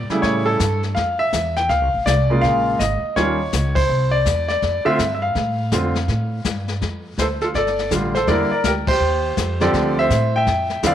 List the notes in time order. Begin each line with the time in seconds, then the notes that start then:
0.09 C#3 G3 A3 E4, muted upright bass stroke, snare
0.22 A2 C#5, brush sweep, kick, snare
0.46 A4
0.60 G2, kick, snare, hi-hat pedal
0.83 snare
0.95 F2 F5, brush sweep, kick, snare
1.19 E5
1.33 E2, kick, snare, hi-hat pedal
1.56 G5, snare
1.69 D2 F5, brush sweep, kick, snare
1.81 C2
1.94 A1
2.06 C2 D5, kick, snare, hi-hat pedal
2.30 C#3 G#3 A#3 F4
2.41 A#1 F5, brush sweep, kick, snare
2.79 G#1 D#5, kick, snare, hi-hat pedal
3.02 muted upright bass stroke
3.16 D#2 D#3 G3 C#4 F4 C#5, brush sweep, kick, snare
3.53 C#2, kick, snare, hi-hat pedal
3.75 C5, kick, ride
3.89 C2, brush sweep
4.11 D5
4.26 E2, kick, snare, hi-hat pedal
4.48 D5, snare
4.62 F2, brush sweep, kick, snare
4.85 D3 A3 C4 F4 E5, muted upright bass stroke
4.99 G2, kick, snare, hi-hat pedal
5.15 E5
5.22 F5
5.35 A2, brush sweep, kick, snare
5.72 F2 D3 A3 C4 F4, kick, snare, hi-hat pedal
5.95 snare
6.08 A2, brush sweep, kick, snare
6.45 G2, kick, snare, hi-hat pedal
6.68 snare
6.81 F2, brush sweep, kick, snare
7.18 D2 A4 C5, kick, snare, hi-hat pedal
7.41 F4 A4, snare
7.54 G1 A4 D5, brush sweep, kick, snare
7.67 snare
7.79 snare
7.91 A1 D3 G3 A3 F4, kick, snare, hi-hat pedal
8.15 A4 C5, snare
8.27 E2 D3 G3 A#3 E4 A#4 D5, brush sweep, kick, snare
8.51 A#4 D5, muted upright bass stroke
8.64 D2 G4 A#4, kick, snare, hi-hat pedal
8.87 G4 C5, kick, ride
9.00 D#2, brush sweep
9.37 F2, kick, snare, hi-hat pedal
9.60 D3 F3 C4 G4 A4 D5, snare
9.74 D2, brush sweep, kick, snare
9.99 C5 E5
10.10 A2, kick, snare, hi-hat pedal
10.36 E5 G5
10.47 F2, brush sweep, kick, snare
10.70 snare
10.83 E2 D3 F3 C4 E4 F5, kick, snare, hi-hat pedal
10.87 D5